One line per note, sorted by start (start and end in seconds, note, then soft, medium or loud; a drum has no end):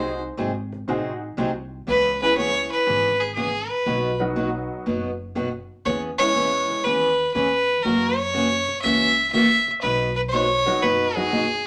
0.00 0.28 C2 medium
0.00 0.12 C3 medium
0.00 0.12 F#3 medium
0.00 0.12 C4 medium
0.00 0.19 C4 medium
0.00 0.12 D#4 medium
0.00 0.19 D#4 medium
0.00 0.20 F#4 medium
0.00 0.12 G#4 medium
0.00 0.20 G#4 medium
0.00 0.12 C5 medium
0.00 0.20 C5 medium
0.37 0.81 G#1 medium
0.37 0.50 C3 medium
0.37 0.50 F#3 medium
0.37 0.51 C4 medium
0.37 0.51 D#4 medium
0.37 0.51 G#4 medium
0.37 0.51 C5 medium
0.37 cajon slap soft
0.72 cajon slap soft
0.88 1.31 A1 medium
0.88 1.11 C3 medium
0.88 1.11 F#3 medium
0.88 1.18 C4 medium
0.88 1.12 C4 medium
0.88 1.19 D#4 medium
0.88 1.12 D#4 medium
0.88 1.19 F#4 medium
0.88 1.12 G#4 medium
0.88 1.20 G#4 medium
0.88 1.12 C5 medium
0.88 cajon slap soft
1.37 1.80 C2 medium
1.37 1.50 C3 medium
1.37 1.50 F#3 medium
1.37 1.50 C4 medium
1.37 1.50 D#4 medium
1.37 1.50 G#4 medium
1.37 1.50 C5 medium
1.37 cajon slap soft
1.87 2.67 C#2 loud
1.87 2.10 C#3 medium
1.87 2.11 E3 medium
1.87 2.11 B3 medium
1.87 2.11 C#4 medium
1.87 2.11 G#4 medium
1.87 2.20 B4 loud
1.87 cajon slap soft
2.21 2.84 B3 medium
2.21 2.84 C#4 medium
2.21 2.84 E4 medium
2.21 2.85 G#4 medium
2.21 2.37 B4 loud
2.36 2.49 C#3 medium
2.36 2.49 E3 medium
2.36 2.50 B3 medium
2.36 2.50 C#4 medium
2.36 2.50 G#4 medium
2.36 2.69 C#5 loud
2.36 cajon slap soft
2.72 3.22 B4 loud
2.86 3.67 G#1 medium
2.86 3.10 C#3 medium
2.86 3.10 E3 medium
2.86 3.10 B3 medium
2.86 3.10 C#4 medium
2.86 3.10 G#4 medium
2.86 cajon slap soft
3.20 3.34 G#4 medium
3.35 3.49 C#3 medium
3.35 3.49 E3 medium
3.35 3.49 B3 medium
3.35 3.49 C#4 medium
3.35 3.71 G#4 medium
3.35 3.50 G#4 medium
3.35 cajon slap soft
3.69 4.20 B4 medium
3.86 4.66 B1 medium
3.86 4.10 B2 medium
3.86 4.10 F#3 medium
3.86 4.10 B3 medium
3.86 4.10 D#4 medium
3.86 4.10 F#4 medium
3.86 cajon slap soft
4.20 4.82 F#3 medium
4.20 4.83 B3 medium
4.20 4.83 D#4 medium
4.20 4.83 F#4 medium
4.36 4.48 B2 medium
4.36 4.49 F#3 medium
4.36 4.49 B3 medium
4.36 4.49 D#4 medium
4.36 4.49 F#4 medium
4.36 cajon slap soft
4.86 5.66 F#1 medium
4.86 5.09 B2 medium
4.86 5.09 F#3 medium
4.86 5.10 B3 medium
4.86 5.10 D#4 medium
4.86 5.10 F#4 medium
4.86 cajon slap soft
5.35 5.48 B2 medium
5.35 5.48 F#3 medium
5.35 5.48 B3 medium
5.35 5.48 D#4 medium
5.35 5.49 F#4 medium
5.35 cajon slap soft
5.85 6.65 E2 medium
5.85 6.09 E3 medium
5.85 6.09 B3 medium
5.85 6.09 C#4 medium
5.85 6.09 G#4 medium
5.85 6.01 C#5 medium
5.85 cajon slap soft
6.18 6.81 G#3 medium
6.18 6.82 B3 medium
6.18 6.82 C#4 medium
6.18 6.82 E4 medium
6.18 6.86 C#5 loud
6.35 6.47 E3 medium
6.35 6.48 B3 medium
6.35 6.48 C#4 medium
6.35 6.48 G#4 medium
6.35 cajon slap soft
6.70 cajon slap soft
6.84 7.27 D#2 medium
6.84 7.08 E3 medium
6.84 7.09 B3 medium
6.84 7.09 C#4 medium
6.84 7.09 G#4 medium
6.84 7.33 B4 loud
6.84 cajon slap soft
7.34 7.77 E2 medium
7.34 7.47 E3 medium
7.34 7.47 B3 medium
7.34 7.47 C#4 medium
7.34 7.48 G#4 medium
7.34 7.84 B4 loud
7.34 cajon slap soft
7.83 8.64 F#2 medium
7.83 8.08 C#3 soft
7.83 8.08 E3 medium
7.83 8.08 A#3 medium
7.83 8.08 C#4 medium
7.83 8.08 F#4 medium
7.83 8.18 A#4 medium
7.83 cajon slap soft
8.16 8.81 C#5 loud
8.34 8.46 C#3 medium
8.34 8.47 E3 medium
8.34 8.47 A#3 medium
8.34 8.47 C#4 medium
8.34 8.47 F#4 medium
8.34 cajon slap soft
8.68 cajon slap soft
8.82 9.63 C#2 medium
8.82 9.07 C#3 medium
8.82 9.07 E3 medium
8.82 9.07 A#3 medium
8.82 9.07 C#4 medium
8.82 9.07 F#4 medium
8.82 9.29 E5 loud
8.82 cajon slap soft
9.32 9.46 C#3 medium
9.32 9.46 E3 medium
9.32 9.46 A#3 medium
9.32 9.46 C#4 medium
9.32 9.46 F#4 medium
9.32 9.72 E5 loud
9.32 cajon slap soft
9.68 cajon slap soft
9.82 10.63 B1 loud
9.82 10.06 B2 medium
9.82 10.06 F#3 medium
9.82 10.07 B3 medium
9.82 10.07 D#4 medium
9.82 10.07 F#4 medium
9.82 10.14 B4 medium
9.82 cajon slap soft
10.16 10.21 B4 medium
10.29 10.45 B2 medium
10.29 10.33 C5 medium
10.29 10.84 C#5 loud
10.33 10.45 F#3 medium
10.33 10.46 B3 medium
10.33 10.46 D#4 medium
10.33 10.46 F#4 medium
10.33 cajon slap soft
10.66 10.81 F#3 medium
10.66 10.81 B3 medium
10.66 10.81 D#4 medium
10.66 10.81 F#4 medium
10.66 cajon slap soft
10.82 11.63 F#1 medium
10.82 11.06 B2 medium
10.82 11.06 F#3 medium
10.82 11.06 B3 medium
10.82 11.06 D#4 medium
10.82 11.06 F#4 medium
10.82 11.17 B4 medium
10.82 cajon slap soft
11.16 11.30 F#3 medium
11.16 11.31 B3 medium
11.16 11.31 D#4 medium
11.16 11.31 F#4 medium
11.16 11.67 G#4 loud
11.32 11.45 B2 medium
11.32 11.45 F#3 medium
11.32 11.45 B3 medium
11.32 11.45 D#4 medium
11.32 11.45 F#4 medium
11.32 cajon slap soft